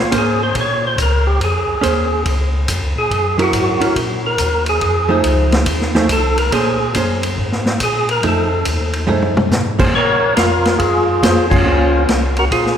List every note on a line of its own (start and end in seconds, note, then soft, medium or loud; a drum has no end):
0.01 0.13 F4 medium
0.12 0.54 G#2 loud
0.12 0.37 A#3 medium
0.12 0.37 C#4 medium
0.12 0.37 G#4 medium
0.12 0.38 C5 medium
0.12 kick soft
0.12 hi-hat pedal soft
0.12 ride medium
0.18 0.42 G#4 medium
0.43 0.56 C5 medium
0.55 0.96 A#2 medium
0.55 kick soft
0.55 ride medium
0.61 0.85 C#5 medium
0.87 0.99 C5 medium
0.98 1.39 C#2 loud
0.98 kick soft
0.98 hi-hat pedal medium
0.98 ride medium
1.02 1.27 A#4 medium
1.27 1.40 G4 medium
1.40 1.66 F2 medium
1.40 2.23 G#4 medium
1.40 kick soft
1.40 ride medium
1.68 1.75 F2 soft
1.81 2.24 D#2 medium
1.81 2.08 A#3 medium
1.81 2.07 C#4 medium
1.81 2.08 G#4 medium
1.81 2.08 C5 medium
1.81 kick soft
1.81 hi-hat pedal medium
1.81 ride medium
2.25 2.67 C#2 medium
2.25 kick soft
2.25 ride medium
2.68 2.82 F2 medium
2.68 kick soft
2.68 hi-hat pedal medium
2.68 ride medium
2.81 2.96 C#2 medium
2.96 3.09 A#2 medium
2.96 3.37 G#4 loud
3.11 3.52 F#2 medium
3.11 kick soft
3.11 ride medium
3.38 3.78 F#3 medium
3.38 3.79 C#4 medium
3.38 3.79 E4 medium
3.38 3.79 A#4 medium
3.38 ride soft
3.42 3.94 F#4 medium
3.53 3.79 G#2 medium
3.53 kick soft
3.53 hi-hat pedal medium
3.53 ride medium
3.80 3.88 G#2 soft
3.80 3.94 F#3 medium
3.80 3.94 C#4 medium
3.80 3.94 E4 medium
3.80 3.94 A#4 medium
3.80 ride soft
3.96 4.37 A#2 medium
3.96 kick soft
3.96 ride medium
4.26 4.65 A#4 medium
4.38 4.80 D#2 medium
4.38 kick soft
4.38 hi-hat pedal medium
4.38 ride medium
4.66 5.21 G#4 loud
4.66 ride medium
4.81 5.23 F2 medium
4.81 kick soft
4.81 ride medium
5.09 5.63 F3 medium
5.09 5.63 A3 medium
5.09 5.64 D#4 medium
5.09 5.64 G#4 medium
5.24 5.65 C#2 loud
5.24 kick soft
5.24 hi-hat pedal soft
5.24 ride medium
5.52 snare medium
5.52 ride soft
5.66 6.08 D#2 medium
5.66 kick soft
5.66 ride medium
5.81 snare soft
5.95 6.08 F3 medium
5.95 6.08 A3 medium
5.95 6.08 D#4 medium
5.95 6.08 G#4 medium
5.95 snare soft
6.09 6.51 C2 medium
6.09 6.38 A4 medium
6.09 kick soft
6.09 hi-hat pedal medium
6.09 ride medium
6.38 6.52 A#4 loud
6.38 ride medium
6.52 6.94 A#2 medium
6.52 6.78 A#3 medium
6.52 6.78 C#4 medium
6.52 6.78 G#4 medium
6.52 6.93 G#4 medium
6.52 6.78 C5 medium
6.52 kick soft
6.52 ride medium
6.94 7.36 F#2 medium
6.94 7.21 A#3 medium
6.94 7.21 C#4 medium
6.94 7.21 G#4 medium
6.94 7.21 C5 medium
6.94 kick soft
6.94 hi-hat pedal medium
6.94 ride medium
7.23 ride medium
7.37 7.79 G#2 medium
7.37 kick soft
7.52 snare soft
7.66 snare medium
7.80 8.22 A#2 medium
7.80 8.09 G#4 medium
7.80 kick soft
7.80 hi-hat pedal medium
7.80 ride medium
8.09 8.24 A#4 loud
8.09 ride soft
8.23 8.64 F2 medium
8.23 8.49 F3 medium
8.23 8.49 A3 medium
8.23 8.49 D#4 medium
8.23 8.49 G#4 medium
8.23 kick soft
8.23 ride medium
8.27 8.65 A4 medium
8.65 9.07 D#2 loud
8.65 kick soft
8.65 hi-hat pedal medium
8.65 ride medium
8.93 ride soft
9.07 9.50 F#2 medium
9.07 9.33 F3 medium
9.07 9.33 A3 medium
9.07 9.33 D#4 medium
9.07 9.33 G#4 medium
9.07 mid tom medium
9.22 mid tom medium
9.37 mid tom loud
9.51 9.93 G#2 medium
9.51 snare medium
9.51 hi-hat pedal medium
9.79 9.92 A#3 medium
9.79 9.92 C#4 medium
9.79 9.93 G#4 medium
9.79 9.93 C5 medium
9.79 kick medium
9.79 crash medium
9.94 10.20 A#2 medium
9.94 10.35 A#4 medium
9.94 10.34 C#5 loud
9.94 kick soft
10.22 10.29 A#2 soft
10.36 10.78 F2 medium
10.36 10.77 F4 medium
10.36 10.81 A#4 medium
10.36 kick soft
10.36 snare medium
10.36 hi-hat pedal medium
10.36 ride medium
10.65 snare soft
10.65 ride soft
10.78 11.21 F#2 medium
10.78 11.46 F4 medium
10.78 11.46 G#4 medium
10.78 kick soft
10.78 ride medium
11.23 11.64 F2 medium
11.23 11.48 A#3 medium
11.23 11.48 C#4 medium
11.23 11.48 G#4 medium
11.23 11.49 C5 medium
11.23 kick soft
11.23 snare medium
11.23 hi-hat pedal medium
11.23 ride medium
11.50 12.04 C#4 medium
11.50 12.04 F4 medium
11.50 kick medium
11.50 crash medium
11.64 12.06 C#2 medium
11.64 12.78 A#3 medium
11.64 12.78 C#4 soft
11.64 12.78 G#4 medium
11.64 12.78 C5 soft
12.08 12.50 C2 medium
12.08 kick soft
12.08 snare medium
12.08 hi-hat pedal soft
12.08 ride medium
12.36 12.45 F#4 medium
12.36 12.45 A#4 medium
12.36 ride soft
12.51 12.78 A#2 medium
12.51 12.78 F4 medium
12.51 12.78 G#4 medium
12.51 kick soft
12.51 ride medium
12.66 snare soft